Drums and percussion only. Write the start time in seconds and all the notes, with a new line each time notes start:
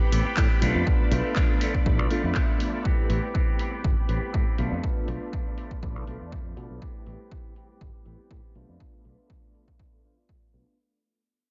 0.12 open hi-hat
0.37 kick, clap
0.62 open hi-hat
0.87 kick
1.12 open hi-hat
1.36 kick, clap
1.61 open hi-hat
1.74 kick
1.86 kick
2.11 open hi-hat
2.35 kick, clap
2.60 open hi-hat
2.85 kick
3.10 open hi-hat
3.35 kick
3.59 open hi-hat
3.84 kick
4.09 open hi-hat
4.34 kick
4.58 open hi-hat
4.84 kick
5.08 open hi-hat
5.33 kick
5.58 open hi-hat
5.71 kick
5.83 kick
6.07 open hi-hat
6.32 kick
6.57 open hi-hat
6.82 kick
7.07 open hi-hat
7.32 kick
7.56 open hi-hat
7.81 kick
8.06 open hi-hat
8.31 kick
8.55 open hi-hat
8.80 kick
9.05 open hi-hat
9.30 kick
9.55 open hi-hat
9.68 kick
9.79 kick
10.04 open hi-hat
10.29 kick